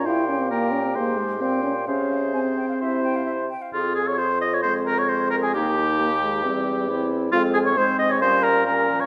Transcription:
<<
  \new Staff \with { instrumentName = "Flute" } { \time 4/4 \key f \minor \tempo 4 = 133 g''4 g''2 g''4 | f''4 aes''8 g''16 f''16 e''8 g''16 f''16 e''8 g''16 f''16 | f'8 aes'16 des''16 c''8 ees''16 des''16 c''8 bes'16 des''16 c''8 bes'16 aes'16 | g'2.~ g'8 r8 |
f'8 aes'16 des''16 c''8 ees''16 des''16 c''8 bes'8 bes'8. des''16 | }
  \new Staff \with { instrumentName = "Oboe" } { \time 4/4 \key f \minor c''4 bes'4 c''4 c''4 | c''2 c''4. r8 | f'8 aes'16 des''16 c''8 ees''16 des''16 c''8 bes'16 des''16 c''8 bes'16 aes'16 | g'2.~ g'8 r8 |
f'8 aes'16 des''16 c''8 ees''16 des''16 c''8 bes'8 bes'8. des''16 | }
  \new Staff \with { instrumentName = "Clarinet" } { \time 4/4 \key f \minor g'1 | aes'2 e'4. r8 | aes'4 f'4 c'2 | ees'8 ees'4. c'4 e'4 |
c'4 c'4 des'4 des'4 | }
  \new Staff \with { instrumentName = "French horn" } { \time 4/4 \key f \minor e'8 des'16 c'16 bes8 des'16 c'16 bes8 aes8 c'8 des'8 | des'4 c'2~ c'8 r8 | c'2 aes2 | bes4 bes8 aes8 g4 c'4 |
aes4 aes4 g4 g8 f8 | }
  \new Staff \with { instrumentName = "Bassoon" } { \clef bass \time 4/4 \key f \minor bes,2 aes,4 bes,4 | c2 c4. r8 | f,1 | ees,2 e,2 |
f,4 aes,4 bes,2 | }
>>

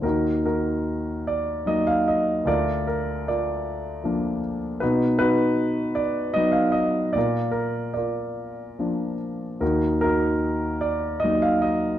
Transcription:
<<
  \new Staff \with { instrumentName = "Grand piano" } { \time 3/4 \key ees \minor \tempo 4 = 75 << { bes'8 bes'4 d''8 ees''16 f''16 ees''8 | d''8 bes'8 d''4. r8 | b'8 b'4 d''8 dis''16 f''16 dis''8 | d''8 bes'8 d''4. r8 |
bes'8 bes'4 d''8 ees''16 f''16 ees''8 | } \\ { <ees' ges'>8 <ees' ges'>4. r4 | <f' bes'>4 <f' bes'>4. r8 | <dis' fis'>8 <dis' fis'>4. r4 | <f' bes'>4 <f' bes'>4. r8 |
<ees' ges'>8 <ees' ges'>4. r4 | } >> }
  \new Staff \with { instrumentName = "Grand piano" } { \clef bass \time 3/4 \key ees \minor ees,2 <ges bes ees'>4 | d,2 <f bes d'>4 | b,2 <fis b dis'>4 | bes,2 <f bes d'>4 |
ees,2 <ges bes ees'>4 | }
>>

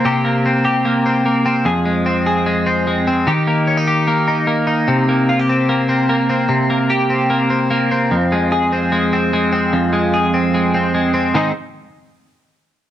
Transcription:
\new Staff \with { instrumentName = "Clean electric guitar" } { \time 4/4 \key c \phrygian \tempo 4 = 149 <c bes c' g'>8 bes8 c'8 g'8 bes8 c'8 bes8 c'8 | <f, aes'>8 aes8 c'8 aes'8 aes8 c'8 aes8 c'8 | <ees g'>8 bes8 des'16 ees'16 g'8 bes8 ees'8 bes8 ees'8 | c8 bes8 f'16 g'16 c'8 bes8 c'8 bes8 c'8 |
c8 bes8 g'8 c'8 bes8 c'8 bes8 c'8 | f,8 aes8 aes'8 c'8 aes8 c'8 aes8 c'8 | f,8 aes8 aes'8 c'8 aes8 c'8 aes8 c'8 | <aes, ees aes c' ees' aes'>8 r2. r8 | }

